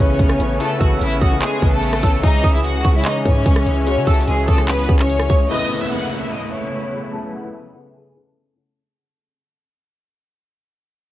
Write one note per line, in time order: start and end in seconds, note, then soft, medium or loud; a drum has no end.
0.00 0.19 A1 loud
0.00 0.39 C#3 loud
0.00 5.46 C#3 medium
0.00 2.23 E3 medium
0.00 0.40 A3 loud
0.00 2.20 B3 medium
0.00 0.57 C#4 medium
0.00 2.20 C#4 medium
0.00 0.40 E4 medium
0.00 2.24 G#4 medium
0.00 0.41 B4 loud
0.00 0.57 C#5 medium
0.19 0.39 A1 loud
0.19 kick loud
0.19 closed hi-hat medium
0.30 cross-stick loud
0.39 0.59 A1 loud
0.39 0.56 C#3 medium
0.39 0.56 A3 medium
0.39 0.57 E4 medium
0.39 0.57 B4 medium
0.39 closed hi-hat medium
0.60 1.18 C#3 loud
0.60 1.18 A3 loud
0.60 0.78 A3 medium
0.60 1.18 E4 medium
0.60 0.77 A4 medium
0.60 1.19 A4 loud
0.60 closed hi-hat medium
0.81 1.00 A1 loud
0.81 0.98 F#4 medium
0.81 0.98 F#5 medium
0.81 1.19 E6 medium
0.81 kick loud
0.81 closed hi-hat medium
1.01 1.21 A1 loud
1.01 1.18 E4 medium
1.01 1.19 E5 medium
1.01 closed hi-hat medium
1.21 1.41 A1 loud
1.21 1.39 F#4 medium
1.21 1.39 F#5 medium
1.21 1.41 D#6 medium
1.21 kick medium
1.21 closed hi-hat medium
1.31 1.56 C#3 medium
1.31 1.56 A3 medium
1.31 1.57 E4 medium
1.31 1.57 B4 medium
1.42 1.71 G#3 medium
1.42 1.71 G#4 medium
1.42 clap loud
1.42 closed hi-hat medium
1.62 2.01 A1 loud
1.62 1.95 C#3 medium
1.62 1.95 A3 medium
1.62 1.96 E4 medium
1.62 1.96 B4 medium
1.62 kick loud
1.72 2.21 A3 medium
1.72 2.20 A4 medium
1.83 closed hi-hat medium
1.93 cross-stick loud
2.03 2.23 A1 loud
2.03 2.19 C#3 medium
2.03 2.20 A3 medium
2.03 2.20 E4 medium
2.03 2.20 C#5 medium
2.03 2.23 E6 medium
2.03 kick loud
2.03 closed hi-hat soft
2.03 open hi-hat medium
2.10 closed hi-hat medium
2.17 closed hi-hat medium
2.23 2.43 C#2 loud
2.23 2.81 E3 loud
2.23 5.47 E3 medium
2.23 2.82 G#3 medium
2.23 5.47 G#3 medium
2.23 5.47 C#4 medium
2.23 2.82 C#4 medium
2.23 2.52 D#4 loud
2.23 2.82 G#4 loud
2.23 2.53 D#5 medium
2.23 kick loud
2.23 closed hi-hat medium
2.44 2.83 C#2 loud
2.44 2.82 D#6 medium
2.44 kick loud
2.44 closed hi-hat medium
2.54 2.63 E4 medium
2.54 2.63 E5 medium
2.64 2.93 F#4 medium
2.64 2.94 F#5 medium
2.64 closed hi-hat medium
2.85 3.04 C#2 loud
2.85 3.04 C#6 medium
2.85 kick medium
2.85 closed hi-hat medium
2.94 3.19 E3 medium
2.94 3.20 G#3 medium
2.94 3.20 C#4 medium
2.94 3.04 E4 medium
2.94 3.20 G#4 loud
2.94 3.04 E5 medium
3.05 3.22 D#4 medium
3.05 3.23 D#5 medium
3.05 clap loud
3.05 closed hi-hat medium
3.25 3.45 G#2 loud
3.25 3.58 E3 medium
3.25 3.59 G#3 medium
3.25 3.83 C#4 medium
3.25 3.59 C#4 medium
3.25 3.59 G#4 medium
3.25 3.84 C#5 medium
3.25 kick loud
3.25 closed hi-hat medium
3.46 3.66 C#2 loud
3.46 kick loud
3.46 closed hi-hat medium
3.56 cross-stick loud
3.66 3.98 C#2 loud
3.66 3.83 E3 medium
3.66 3.83 G#3 medium
3.66 3.83 C#4 medium
3.66 3.83 G#4 medium
3.66 closed hi-hat medium
3.86 4.45 E3 loud
3.86 4.45 G#3 loud
3.86 4.45 C#4 medium
3.86 4.04 C#4 medium
3.86 4.45 F#4 loud
3.86 4.04 C#5 loud
3.86 closed hi-hat medium
3.97 4.07 C#3 loud
4.07 4.27 C#2 loud
4.07 4.25 A3 medium
4.07 4.24 A4 medium
4.07 4.46 E6 medium
4.07 kick loud
4.07 closed hi-hat medium
4.14 closed hi-hat medium
4.21 closed hi-hat medium
4.28 4.47 C#2 loud
4.28 4.45 G#3 medium
4.28 4.45 G#4 medium
4.28 closed hi-hat medium
4.48 4.87 C#2 loud
4.48 4.66 A3 medium
4.48 4.65 A4 medium
4.48 4.67 D#6 medium
4.48 kick medium
4.48 closed hi-hat medium
4.58 4.83 E3 medium
4.58 4.83 G#3 medium
4.58 4.83 C#4 medium
4.58 4.83 G#4 medium
4.58 cross-stick medium
4.68 4.98 B3 medium
4.68 4.97 B4 medium
4.68 clap loud
4.68 closed hi-hat medium
4.74 closed hi-hat medium
4.79 closed hi-hat medium
4.84 closed hi-hat medium
4.88 5.28 C#2 loud
4.88 5.22 E3 medium
4.88 5.22 G#3 medium
4.88 5.22 C#4 medium
4.88 5.22 G#4 medium
4.88 kick loud
4.99 5.47 C#4 medium
4.99 5.47 C#5 medium
4.99 clap medium
5.09 closed hi-hat medium
5.19 cross-stick loud
5.29 5.49 C#2 loud
5.29 5.46 E3 medium
5.29 5.46 G#3 medium
5.29 5.46 C#4 medium
5.29 5.47 G#4 medium
5.29 5.49 C#6 medium
5.29 kick loud
5.29 open hi-hat medium
5.49 5.75 C#3 loud
5.49 8.73 C#3 medium
5.49 5.75 A3 medium
5.49 8.73 A3 medium
5.49 8.73 B3 medium
5.49 8.73 E4 medium
5.49 5.75 E4 medium
5.49 5.75 B4 loud
5.49 5.79 D#5 loud
5.49 5.79 D#6 medium
5.49 downlifter medium
5.80 6.05 C#3 medium
5.80 6.05 A3 medium
5.80 6.06 E4 medium
5.80 6.06 B4 medium
5.80 5.89 E5 medium
5.80 5.90 E6 medium
5.91 6.20 F#5 medium
5.91 6.20 F#6 medium
6.11 6.77 C#3 medium
6.11 6.78 A3 medium
6.11 6.78 E4 medium
6.11 6.78 B4 medium
6.22 6.30 E5 medium
6.22 6.31 E6 medium
6.32 6.49 D#5 medium
6.32 6.49 D#6 medium
6.52 7.10 C#5 medium
6.52 7.10 C#6 medium
6.92 7.09 C#3 medium
6.92 7.10 A3 medium
6.92 7.10 E4 medium
6.92 7.10 B4 medium
7.12 7.38 C#3 loud
7.12 7.38 A3 medium
7.12 7.38 E4 medium
7.12 7.38 A4 loud
7.12 7.31 A4 medium
7.12 7.30 A5 medium
7.34 7.51 F#5 medium
7.34 7.51 F#6 medium
7.43 7.69 C#3 medium
7.43 7.69 A3 medium
7.43 7.69 E4 medium
7.43 7.69 B4 medium
7.54 7.71 E5 medium
7.54 7.72 E6 medium
7.74 8.07 C#3 medium
7.74 8.08 A3 medium
7.74 8.08 E4 medium
7.74 8.08 B4 medium
7.74 7.92 F#5 medium
7.74 7.92 F#6 medium
7.95 8.24 G#4 medium
7.95 8.24 G#5 medium
8.15 8.48 C#3 medium
8.15 8.49 A3 medium
8.15 8.49 E4 medium
8.15 8.49 B4 medium
8.26 8.74 A4 medium
8.26 8.73 A5 medium
8.55 8.72 C#3 medium
8.55 8.73 A3 medium
8.55 8.73 E4 medium
8.55 8.73 C#5 medium